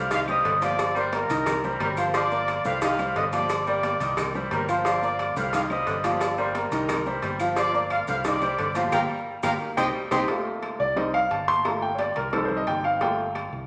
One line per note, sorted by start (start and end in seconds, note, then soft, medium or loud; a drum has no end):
0.00 0.41 C2 medium
0.00 0.11 F5 loud
0.11 0.28 C3 medium
0.11 0.25 D#3 medium
0.11 0.25 D#4 medium
0.11 0.25 D#5 medium
0.11 0.19 F5 loud
0.11 cowbell loud
0.11 high conga soft
0.11 maracas medium
0.28 0.56 G3 medium
0.28 0.56 G4 medium
0.28 0.56 C5 medium
0.28 0.60 D#5 loud
0.28 0.60 D#6 medium
0.28 claves medium
0.28 maracas soft
0.44 1.24 G1 loud
0.44 0.53 D3 medium
0.44 cowbell medium
0.44 high conga soft
0.44 maracas soft
0.61 0.79 C3 medium
0.61 0.90 F3 medium
0.61 0.90 F4 medium
0.61 0.94 D5 loud
0.61 0.90 F5 medium
0.61 0.94 D6 medium
0.61 cowbell medium
0.61 high conga medium
0.61 maracas medium
0.79 cowbell loud
0.79 high conga soft
0.79 claves medium
0.79 maracas medium
0.95 1.23 G3 medium
0.95 1.24 A#3 medium
0.95 1.24 A#4 medium
0.95 1.12 C5 loud
0.95 1.24 D5 medium
0.95 1.12 C6 medium
0.95 high conga soft
0.95 maracas soft
1.13 1.77 A#4 loud
1.13 1.77 A#5 medium
1.13 cowbell medium
1.13 high conga loud
1.13 maracas soft
1.29 1.77 C2 loud
1.29 1.58 D#3 medium
1.29 1.58 D#4 medium
1.29 1.58 D#5 medium
1.29 cowbell medium
1.29 high conga soft
1.29 maracas medium
1.46 1.64 D#3 medium
1.46 cowbell loud
1.46 high conga soft
1.46 low conga medium
1.46 claves medium
1.46 maracas loud
1.63 1.92 G3 medium
1.63 1.92 G4 medium
1.63 1.92 C5 medium
1.63 high conga soft
1.63 maracas soft
1.80 2.59 G1 loud
1.80 1.98 G3 medium
1.80 1.89 A#4 medium
1.80 1.89 A#5 medium
1.80 cowbell medium
1.80 high conga medium
1.80 maracas soft
1.97 2.11 F3 medium
1.97 2.11 F4 medium
1.97 2.05 C5 medium
1.97 2.12 F5 medium
1.97 2.06 C6 medium
1.97 high conga soft
1.97 claves medium
1.97 maracas medium
2.14 2.42 F3 loud
2.14 2.28 F3 medium
2.14 2.29 F4 medium
2.14 2.62 D5 loud
2.14 2.29 F5 medium
2.14 2.62 D6 medium
2.14 cowbell loud
2.14 high conga soft
2.14 maracas medium
2.31 2.59 A#3 medium
2.31 2.59 A#4 medium
2.31 2.60 D5 medium
2.31 maracas soft
2.48 cowbell medium
2.48 high conga medium
2.48 claves medium
2.48 maracas soft
2.64 3.13 C2 loud
2.64 2.74 D3 medium
2.64 2.79 G3 medium
2.64 2.79 G4 medium
2.64 2.79 C5 medium
2.64 2.81 F5 loud
2.64 maracas medium
2.82 3.00 C3 medium
2.82 2.96 D#3 medium
2.82 2.96 D#4 medium
2.82 2.96 D#5 medium
2.82 3.14 F5 loud
2.82 cowbell loud
2.82 high conga soft
2.82 maracas medium
2.99 3.27 G3 medium
2.99 3.27 G4 medium
2.99 3.27 C5 medium
2.99 claves medium
2.99 maracas soft
3.15 3.95 G1 medium
3.15 3.25 D3 medium
3.15 3.24 D#5 loud
3.15 3.24 D#6 medium
3.15 cowbell medium
3.15 high conga soft
3.15 maracas soft
3.32 3.50 C3 medium
3.32 3.61 F3 medium
3.32 3.61 F4 medium
3.32 3.65 D5 loud
3.32 3.61 F5 medium
3.32 3.65 D6 medium
3.32 cowbell medium
3.32 high conga medium
3.32 maracas medium
3.49 cowbell loud
3.49 claves medium
3.49 maracas medium
3.67 3.94 G3 medium
3.67 3.95 A#3 medium
3.67 3.95 A#4 medium
3.67 4.21 D5 loud
3.67 3.95 D5 medium
3.67 4.21 D6 medium
3.67 high conga soft
3.67 maracas soft
3.83 cowbell medium
3.83 high conga loud
3.83 maracas soft
4.00 4.48 C2 medium
4.00 4.29 D#3 medium
4.00 4.29 D#4 medium
4.00 4.29 D#5 medium
4.00 cowbell medium
4.00 high conga soft
4.00 maracas medium
4.17 4.35 D#3 medium
4.17 cowbell loud
4.17 high conga soft
4.17 low conga medium
4.17 claves medium
4.17 maracas medium
4.35 4.63 G3 medium
4.35 4.63 G4 medium
4.35 4.63 C5 medium
4.35 maracas soft
4.51 5.30 G1 medium
4.51 4.69 G3 medium
4.51 4.68 A#4 medium
4.51 4.68 A#5 medium
4.51 cowbell medium
4.51 high conga medium
4.51 maracas soft
4.68 4.82 F3 medium
4.68 4.82 F4 loud
4.68 4.77 C5 medium
4.68 4.83 F5 medium
4.68 4.77 C6 medium
4.68 high conga soft
4.68 claves medium
4.68 maracas medium
4.85 5.13 F3 medium
4.85 5.00 F3 medium
4.85 5.00 F4 medium
4.85 5.33 D5 loud
4.85 5.00 F5 medium
4.85 5.33 D6 medium
4.85 cowbell loud
4.85 high conga soft
4.85 maracas medium
5.02 5.30 A#3 medium
5.02 5.30 A#4 medium
5.02 5.30 D5 medium
5.02 high conga soft
5.02 maracas soft
5.19 cowbell medium
5.19 high conga medium
5.19 claves medium
5.19 maracas soft
5.36 5.84 C2 loud
5.36 5.45 D3 medium
5.36 5.50 G3 medium
5.36 5.50 G4 medium
5.36 5.51 C5 medium
5.36 5.53 F5 medium
5.36 high conga soft
5.36 maracas medium
5.53 5.71 C3 medium
5.53 5.67 D#3 medium
5.53 5.68 D#4 medium
5.53 5.68 D#5 medium
5.53 5.62 F5 loud
5.53 cowbell loud
5.53 high conga soft
5.53 maracas loud
5.70 5.98 G3 medium
5.70 5.98 G4 medium
5.70 5.98 C5 medium
5.70 6.02 D#5 loud
5.70 6.03 D#6 medium
5.70 claves medium
5.70 maracas soft
5.87 6.66 G1 medium
5.87 5.96 D3 medium
5.87 cowbell medium
5.87 high conga soft
5.87 maracas soft
6.03 6.21 C3 medium
6.03 6.32 F3 loud
6.03 6.32 F4 medium
6.03 6.38 D5 loud
6.03 6.32 F5 medium
6.03 6.38 D6 medium
6.03 cowbell medium
6.03 high conga medium
6.03 maracas medium
6.20 cowbell loud
6.20 claves medium
6.20 maracas medium
6.38 6.65 G3 medium
6.38 6.66 A#3 medium
6.38 6.66 A#4 medium
6.38 6.54 C5 medium
6.38 6.66 D5 medium
6.38 6.54 C6 medium
6.38 maracas soft
6.55 7.19 A#4 medium
6.55 7.19 A#5 medium
6.55 cowbell medium
6.55 high conga loud
6.55 maracas soft
6.71 7.19 C2 loud
6.71 7.00 D#3 medium
6.71 7.00 D#4 medium
6.71 7.00 D#5 medium
6.71 cowbell medium
6.71 high conga soft
6.71 maracas medium
6.88 7.06 D#3 medium
6.88 cowbell loud
6.88 high conga soft
6.88 low conga medium
6.88 claves medium
6.88 maracas medium
7.06 7.34 G3 medium
7.06 7.34 G4 medium
7.06 7.34 C5 medium
7.06 high conga soft
7.06 maracas soft
7.22 8.02 G1 loud
7.22 7.40 G3 medium
7.22 cowbell medium
7.22 high conga medium
7.22 maracas soft
7.40 7.54 F3 medium
7.40 7.54 F4 medium
7.40 7.54 F5 medium
7.40 high conga soft
7.40 claves medium
7.40 maracas medium
7.56 7.84 F3 loud
7.56 7.71 F3 medium
7.56 7.71 F4 medium
7.56 7.73 D5 loud
7.56 7.71 F5 medium
7.56 7.73 D6 medium
7.56 cowbell loud
7.56 high conga soft
7.56 maracas medium
7.74 8.02 A#3 medium
7.74 8.02 A#4 medium
7.74 7.81 D5 medium
7.74 8.02 D5 medium
7.74 7.81 D6 medium
7.74 high conga soft
7.74 maracas soft
7.90 7.99 F5 loud
7.90 cowbell medium
7.90 high conga medium
7.90 claves medium
7.90 maracas soft
8.07 8.55 C2 medium
8.07 8.16 D3 medium
8.07 8.22 G3 medium
8.07 8.22 G4 medium
8.07 8.22 C5 medium
8.07 8.16 F5 loud
8.07 high conga soft
8.07 maracas medium
8.24 8.43 C3 medium
8.24 8.39 D#3 medium
8.24 8.39 D#4 medium
8.24 8.73 D5 loud
8.24 8.39 D#5 medium
8.24 8.73 D6 medium
8.24 cowbell loud
8.24 high conga soft
8.24 maracas medium
8.41 8.70 G3 medium
8.41 8.70 G4 medium
8.41 8.70 C5 medium
8.41 claves medium
8.41 maracas soft
8.58 8.90 G1 loud
8.58 8.67 D3 medium
8.58 cowbell medium
8.58 high conga soft
8.58 maracas soft
8.75 8.93 C3 medium
8.75 8.90 F3 medium
8.75 8.90 F4 medium
8.75 8.92 C5 medium
8.75 8.90 F5 medium
8.75 8.92 C6 medium
8.75 cowbell medium
8.75 high conga medium
8.75 maracas medium
8.92 9.05 G1 loud
8.92 9.03 F4 loud
8.92 9.03 G4 loud
8.92 9.03 A#4 loud
8.92 9.01 F5 loud
8.92 9.01 G5 loud
8.92 9.00 A#5 loud
8.92 cowbell loud
8.92 high conga loud
8.92 claves loud
8.92 maracas medium
9.09 9.37 G3 medium
9.43 9.56 G1 loud
9.43 9.54 F4 loud
9.43 9.54 G4 loud
9.43 9.54 A#4 medium
9.43 9.52 F5 loud
9.43 9.52 G5 medium
9.43 9.52 A#5 loud
9.43 cowbell loud
9.43 high conga loud
9.43 claves loud
9.43 maracas loud
9.60 9.78 D#3 medium
9.77 9.90 C2 medium
9.77 9.88 C4 loud
9.77 9.88 D#4 loud
9.77 9.88 G4 loud
9.77 9.86 D#5 loud
9.77 9.86 G5 loud
9.77 9.85 C6 medium
9.77 cowbell loud
9.77 high conga loud
9.77 claves loud
9.77 maracas loud
9.95 10.12 G3 medium
10.11 10.24 C2 loud
10.11 10.22 C4 loud
10.11 10.22 D#4 loud
10.11 10.22 G4 loud
10.11 10.20 D#5 loud
10.11 10.20 G5 loud
10.11 10.20 C6 medium
10.11 cowbell loud
10.11 high conga loud
10.11 claves medium
10.11 maracas loud
10.28 10.77 A3 medium
10.28 10.77 A#3 medium
10.28 10.78 F4 medium
10.28 cowbell loud
10.28 high conga soft
10.46 high conga soft
10.63 cowbell medium
10.63 high conga medium
10.63 claves medium
10.80 11.27 C2 loud
10.80 10.96 D5 medium
10.80 high conga soft
10.96 11.19 G3 medium
10.96 11.19 C4 medium
10.96 11.20 D#4 medium
10.96 11.13 D#5 medium
10.96 cowbell loud
11.14 11.30 F5 loud
11.14 claves medium
11.31 12.10 G1 medium
11.31 11.47 A5 medium
11.31 cowbell medium
11.31 high conga soft
11.48 11.65 C6 loud
11.48 cowbell medium
11.48 high conga medium
11.65 11.88 A3 medium
11.65 11.88 A#3 medium
11.65 11.88 F4 medium
11.65 11.82 A#5 medium
11.65 cowbell loud
11.65 claves medium
11.82 11.99 G5 medium
11.82 high conga soft
11.94 11.97 C#5 medium
11.99 12.15 D5 medium
11.99 cowbell medium
11.99 high conga loud
12.15 12.64 C2 medium
12.15 12.33 A#4 medium
12.15 cowbell medium
12.15 high conga soft
12.33 12.98 G3 medium
12.33 12.98 C4 medium
12.33 12.99 D#4 medium
12.33 12.44 A4 medium
12.33 cowbell loud
12.33 high conga soft
12.33 low conga medium
12.33 claves medium
12.45 12.56 C5 medium
12.50 high conga soft
12.50 low conga medium
12.57 12.67 D#5 medium
12.67 13.47 G1 medium
12.67 12.84 G5 medium
12.67 cowbell medium
12.67 high conga medium
12.84 13.01 F5 medium
12.84 high conga soft
12.84 claves medium
13.01 13.24 A3 medium
13.01 13.25 A#3 medium
13.01 13.25 F4 medium
13.01 13.34 G5 medium
13.01 cowbell loud
13.01 high conga soft
13.18 high conga soft
13.35 cowbell medium
13.35 high conga medium
13.35 claves medium
13.53 13.67 C2 medium
13.53 high conga soft